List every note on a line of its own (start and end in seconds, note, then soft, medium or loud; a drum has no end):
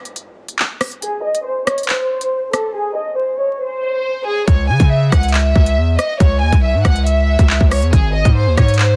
0.00 downlifter medium
0.05 closed hi-hat medium
0.16 closed hi-hat medium
0.48 closed hi-hat medium
0.59 clap loud
0.81 cross-stick loud
0.81 closed hi-hat medium
0.81 open hi-hat medium
0.91 closed hi-hat soft
1.02 1.23 G#4 medium
1.02 closed hi-hat medium
1.24 1.44 D#5 medium
1.35 closed hi-hat medium
1.46 1.66 C5 medium
1.67 1.87 C#5 medium
1.67 cross-stick loud
1.67 closed hi-hat medium
1.78 closed hi-hat medium
1.83 closed hi-hat medium
1.89 2.50 C5 medium
1.89 clap loud
1.89 closed hi-hat medium
1.94 closed hi-hat soft
2.21 closed hi-hat medium
2.53 2.74 A4 medium
2.53 cross-stick medium
2.53 closed hi-hat medium
2.75 2.95 G#4 medium
2.96 3.17 D#5 medium
3.18 3.38 C5 medium
3.40 3.60 C#5 medium
3.61 4.22 C5 medium
4.26 4.46 G#4 medium
4.48 4.71 C#2 loud
4.48 4.68 C#5 medium
4.48 kick loud
4.48 closed hi-hat medium
4.69 4.79 C#3 medium
4.69 4.89 G#5 medium
4.80 5.11 C#3 loud
4.80 kick loud
4.80 closed hi-hat medium
4.91 5.11 E5 medium
5.12 5.54 C#2 loud
5.12 5.33 F#5 medium
5.12 kick medium
5.12 cross-stick loud
5.12 closed hi-hat medium
5.23 closed hi-hat medium
5.29 closed hi-hat medium
5.34 5.95 E5 medium
5.34 clap loud
5.34 closed hi-hat medium
5.39 closed hi-hat soft
5.55 5.79 C#2 loud
5.55 kick medium
5.66 closed hi-hat medium
5.77 5.98 E2 loud
5.99 6.19 D#5 medium
5.99 cross-stick medium
5.99 closed hi-hat medium
6.20 6.43 C#2 loud
6.20 6.41 C#5 medium
6.20 kick loud
6.20 closed hi-hat medium
6.42 6.52 D#2 loud
6.42 6.62 G#5 medium
6.53 6.76 C2 loud
6.53 kick medium
6.53 closed hi-hat medium
6.63 6.84 E5 medium
6.74 6.84 G#2 medium
6.85 7.37 C#2 loud
6.85 7.05 F#5 medium
6.85 kick medium
6.85 cross-stick loud
6.85 closed hi-hat medium
6.96 closed hi-hat medium
7.06 7.67 E5 medium
7.06 closed hi-hat medium
7.39 7.60 C#2 loud
7.39 kick medium
7.39 closed hi-hat medium
7.50 clap loud
7.61 7.83 C#2 loud
7.61 kick loud
7.71 7.92 C#5 medium
7.71 cross-stick medium
7.71 closed hi-hat medium
7.71 open hi-hat medium
7.82 7.92 E2 loud
7.82 closed hi-hat soft
7.93 8.24 G#1 loud
7.93 8.13 G#4 medium
7.93 kick loud
7.93 closed hi-hat medium
8.14 8.35 D#5 medium
8.25 8.48 G#2 loud
8.25 kick loud
8.25 closed hi-hat medium
8.36 8.56 C5 medium
8.47 8.57 D#2 medium
8.58 8.96 G#2 loud
8.58 8.78 C#5 medium
8.58 kick medium
8.58 cross-stick loud
8.58 closed hi-hat medium
8.68 closed hi-hat medium
8.74 closed hi-hat medium
8.79 8.96 C5 medium
8.79 clap loud
8.79 closed hi-hat medium
8.85 closed hi-hat soft